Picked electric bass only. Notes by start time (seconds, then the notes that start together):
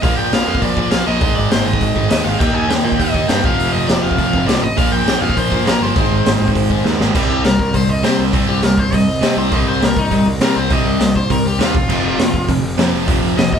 0.04 A#1
0.18 A#1
0.33 A#1
0.48 F2
0.62 A#1
0.77 A#1
0.93 A#1
1.07 A#1
1.22 G#1
1.38 G#1
1.53 G#1
1.66 G#1
1.81 G#1
1.96 G#1
2.11 D#2
2.26 G#1
2.40 D#2
2.55 D#2
2.69 D#2
2.85 A#2
3.00 D#2
3.14 D#2
3.29 G2
3.44 F1
3.59 F1
3.73 F1
3.88 F1
4.04 F1
4.18 F1
4.34 F1
4.47 C2
4.62 A1
4.78 A#1
4.92 A#1
5.07 A#1
5.21 F2
5.37 A#1
5.52 A#1
5.66 A#1
5.81 G1
5.96 G#1
6.11 G#1
6.26 G#1
6.40 G#1
6.55 G#1
6.70 G#1
6.85 D#2
7.00 G#1
7.15 C2
7.30 C2
7.45 C2
7.59 C2
7.74 C2
7.89 C2
8.04 C3
8.19 C2
8.33 C2
8.49 C2
8.64 C2
8.77 C2
8.93 C2
9.08 C2
9.23 C3
9.37 C2
9.52 C2
9.67 C2
9.82 C2
9.96 C2
10.12 C2
10.26 C2
10.41 C3
10.56 C2
10.71 C2
10.85 C2
11.00 C2
11.16 C2
11.30 C2
11.45 C2
11.59 D#2
11.75 F1
11.88 F1
12.04 F1
12.18 F1
12.34 F1
12.49 F1
12.62 F1
12.78 F2
12.93 F1
13.08 F1
13.23 F1
13.37 F1
13.53 F1